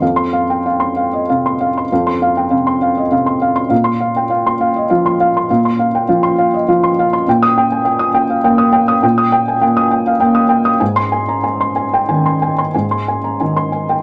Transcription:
felt piano
0.02 F2 F5
0.16 C6
0.33 F5
0.50 G5
0.66 F5
0.80 C6
0.96 F5
1.13 D#5
1.29 C3 F5
1.46 C6
1.61 F5
1.78 C6
1.92 F2 F5
2.07 C6
2.22 F5
2.37 G5
2.51 C3 F5
2.67 C6
2.82 F5
2.97 D#5
3.12 C3 F5
3.26 C6
3.42 F5
3.56 C6
3.70 A#2 F5
3.84 C6
4.00 F5
4.16 G5
4.30 F5
4.46 C6
4.61 F5
4.76 D#5
4.90 F3 F5
5.06 C6
5.20 F5
5.37 C6
5.50 A#2 F5
5.65 C6
5.79 F5
5.95 G5
6.09 F3 F5
6.23 C6
6.38 F5
6.54 D#5
6.68 F3 F5
6.83 C6
6.99 F5
7.13 C6
7.28 A#2 G5
7.43 D#6
7.58 G5
7.72 G#5
7.85 G5
7.99 D#6
8.14 G5
8.30 F5
8.44 A#3 G5
8.58 D#6
8.73 G5
8.88 D#6
9.03 A#2 G5
9.18 D#6
9.32 G5
9.48 G#5
9.61 A#3 G5
9.77 D#6
9.91 G5
10.07 F5
10.20 A#3 G5
10.35 D#6
10.49 G5
10.65 D#6
10.80 G#2 G#5
10.96 C6
11.12 G#5
11.29 A#5
11.44 G#5
11.61 C6
11.76 G#5
11.94 G5
12.09 D#3 G#5
12.26 C6
12.42 G#5
12.58 C6
12.74 G#2 G#5
12.91 C6
13.08 G#5
13.24 A#5
13.40 D#3 G#5
13.57 C6
13.72 G#5
13.89 G5

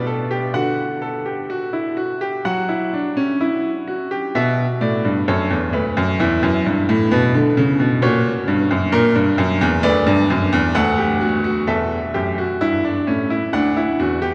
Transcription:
grand piano
Already playing: B2 D5
0.07 A4
0.31 G4
0.54 D3 F#4 F#5
1.02 A4
1.26 G4
1.50 F#4
1.73 E4
1.97 F#4
2.21 G4
2.45 F#3 F#4 F#5
2.69 E4
2.93 D4
3.17 C#4
3.41 E4
3.87 F#4
4.11 G4
4.35 B2 F#4 E5
4.81 A2 D5
5.05 G2
5.28 F#2 A4 C#5
5.50 E2
5.73 D2 B4
5.97 F#2
6.19 E2 E4
6.43 F#2
6.66 G2
6.89 A2
7.11 B2 B4
7.34 D3
7.57 C#3
7.80 B2
8.02 A#2 F#4 C#5
8.48 G2
8.71 F#2
8.92 A#2 A#4
9.15 G2
9.38 F#2
9.61 E2
9.83 D2 B4 D5
10.06 G2
10.30 F#2
10.53 E2
10.75 D2 A4 F#5
10.98 G4
11.21 F#4
11.44 F#4
11.67 E2 A4 E5
12.14 F#2 G4
12.38 F#4
12.61 G2 E4
12.84 D4
13.07 A2 C#4
13.30 E4
13.53 D2 D4 F#5
13.76 E4
13.99 E2 F#4
14.22 G4

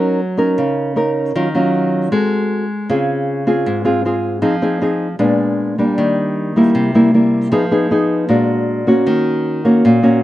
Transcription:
nylon-string guitar
Already playing: F#3 C#4 D#4 A#4
0.37 C#4 D#4 A#4
0.58 C#3
0.96 C#4 D#4 A#4
1.35 D#3 F#3 C#4 F4
1.55 F#3 C#4 F4
2.12 G#3 C4 F#4 A4
2.90 C#3 C4 F4 G#4
3.47 C4 F4 G#4
3.66 G#2
3.85 C4 F4 G#4
4.05 C4 F4 G#4
4.42 F3 C4 D#4 G#4
4.62 C4 D#4 G#4
4.81 C4 D#4 G#4
5.19 A#2 G#3 B3 D4
5.78 G3 A#3 D4
5.98 D#3
6.56 G3 A#3 E4
6.75 C3
6.94 G3 A#3 E4
7.14 G3 A#3 E4
7.52 F3 B3 D#4 G#4
7.71 B3 D#4 G#4
7.91 B3 D#4 G#4
8.29 A#2 G#3 D4 F#4
8.87 A#3 C#4 F#4
9.07 D#3
9.65 A#3 C#4 F#4
9.85 A#2
10.03 A#3 C#4 F#4

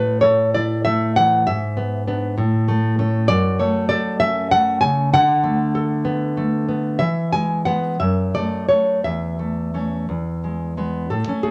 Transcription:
nylon-string guitar
Already playing: A2 A3 B4
0.21 A4 C#5
0.55 E4 D5
0.85 A3 E5
1.16 E3 F#5
1.47 G#2 E5
1.77 B3
2.08 B3 D4
2.38 A2
2.68 A3
2.99 A3 C#4
3.28 F#2 D5
3.59 A3 C#5
3.89 A4 D5
4.20 C#4 E5
4.51 A3 F#5
4.81 C#3 G#5
5.13 D3 F#5
5.44 A3
5.75 A4
6.05 B3
6.37 A3
6.69 B3
6.99 E3 E5
7.33 G#3 G#5
7.65 G#3 B3 F#5
8.00 F#2 E5
8.35 A3 D5
8.69 A3 C#5
9.04 E2 E5
9.39 A3
9.74 A3 C#4
10.09 E2
10.44 G#3
10.77 G#3 B3
11.10 A2 A4
11.28 A3 C#4
11.43 A3 G#4

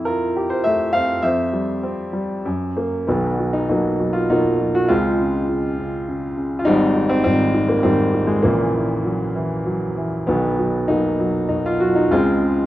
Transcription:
grand piano
Already playing: F2 E4 E5
0.05 F4 A#4
0.37 G4
0.50 C5
0.64 A3 E5
0.93 C4 F5
1.22 F2 C5 E5
1.53 G3
1.83 C4
2.13 G3
2.46 F#2
2.77 A#3
3.07 B1 B2 D#3 F#3 B3
3.39 F#3
3.53 D#4
3.69 B2 F#3 A#3 D#4
4.00 F#3
4.13 F4
4.30 B2 F#3 A#3 D#4
4.59 F#3
4.75 F#4
4.88 C#2 C#3 G#3 C4 F4
5.19 C#3
5.49 C#3
5.79 C#3
6.09 C#3
6.37 C#3
6.59 F4
6.65 G#1 G#2 G3 C4 D#4
6.96 D#3
7.09 C4
7.24 G#2 D#3 G3 C4
7.54 D#3
7.68 A#3
7.83 G#2 D#3 G3 C4
8.14 D#3
8.27 G#3
8.43 A#1 A#2 C#3 E3 A#3
8.74 E3
9.04 F#3
9.35 E3
9.66 F#3
9.98 E3
10.27 B1 B2 D#3 F#3 B3
10.59 F#3
10.88 B2 F#3 A#3 D#4
11.20 F#3
11.49 B2 D#4
11.66 F4
11.80 F#3 F#4
11.95 D#4
12.11 C#2 C#3 G#3 C4 F4
12.42 C#3

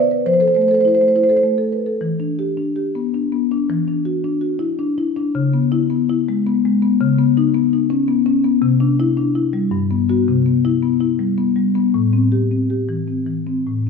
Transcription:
marimba
Already playing: C3 D5
0.11 B4
0.26 F3 C5
0.33 C5
0.40 A4 C5
0.48 C5
0.54 A3 C5
0.61 C5
0.68 A4 C5
0.74 C5
0.81 C5
0.85 E4 C5
0.95 C5
1.01 A3 C5
1.08 C5
1.15 E4 C5
1.23 C5
1.29 A4 C5
1.37 C5
1.43 A3
1.58 A4
1.72 B4
1.86 A4
2.01 E3
2.20 D4
2.39 G4
2.57 D4
2.76 G4
2.95 B3
3.14 D4
3.32 B3
3.51 D4
3.70 E3
3.88 D4
4.05 F#4
4.24 D4
4.41 F#4
4.59 E4
4.79 D4
4.98 E4
5.17 D4
5.35 C#3
5.54 B3
5.72 E4
5.90 B3
6.10 E4
6.29 G#3
6.47 B3
6.65 G#3
6.82 B3
7.01 C#3
7.19 B3
7.37 D#4
7.54 B3
7.73 D#4
7.90 C#4
8.08 B3
8.26 C#4
8.44 B3
8.62 C3
8.80 D4
9.00 E4
9.17 D4
9.35 E4
9.53 G3
9.71 G2
9.91 B3
10.09 B3 F#4
10.28 C3
10.46 B3
10.65 E4
10.82 B3
11.01 E4
11.19 G3
11.38 B3
11.56 G3
11.75 B3
11.94 A2
12.13 C4
12.32 G4
12.52 C4
12.70 G4
12.89 E3
13.08 C4
13.26 E3
13.47 C4
13.67 A2

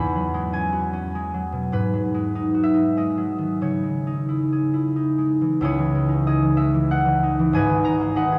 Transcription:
harp
Already playing: E2 C#4 E4 E5 G#5 B5
0.15 F#3
0.34 G#3
0.53 C#4 G#5
0.72 F#4
0.93 C#4
1.15 G#3
1.34 F#3
1.52 B2
1.72 G#2 B4
1.94 F#3
2.14 G#3
2.35 D#4
2.54 F#4
2.64 E5
2.74 D#4
2.97 G#3 D#5
3.17 F#3
3.38 D#3
3.61 C#3 C#5
3.83 G#3
4.07 D#4
4.29 E4
4.52 G#4
4.74 E4
4.96 D#4
5.18 G#3
5.41 E3
5.61 C#2 C#3 E4 G#4 C#5
5.78 E3
5.95 G#3
6.08 D#4
6.27 G#3 G#4 D#5
6.43 E3
6.57 G#3 E5
6.74 E3
6.90 G#3 F#5
7.05 E3
7.23 D#4
7.39 E3
7.53 G#1 G#2 B4 D#5 G#5
7.69 D#3
7.84 G#3 A#5
8.00 A#3
8.16 D#4 B4 D#5 F#5
8.32 G#4

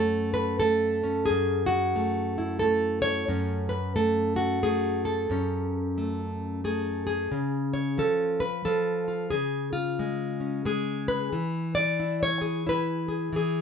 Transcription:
nylon-string guitar
Already playing: F#2 A3 C#4 A4
0.34 B4
0.60 A3 A4
1.04 C#4
1.26 G#4
1.30 F#2
1.66 F#4
1.96 A3
2.38 E4
2.59 A3 A4
3.02 C#5
3.28 F#2 C#4
3.69 B4
3.96 A3 A4
4.36 F#4
4.63 A3 G#4
5.05 A4
5.30 F#2 C#4
5.98 A3
6.64 A3 G#4
7.07 G#4
7.32 C#3
7.74 C#5
7.98 F3 A4
8.40 B4
8.65 F3 A4
9.08 F4
9.30 C#3 G#4
9.73 F4
9.99 G#3
10.40 C#4
10.65 G#3 G#4
11.08 B4
11.32 E3
11.75 D5
12.00 E4
12.23 C#5
12.41 G#4
12.67 E4 B4
13.08 G#4
13.33 E3 G#4

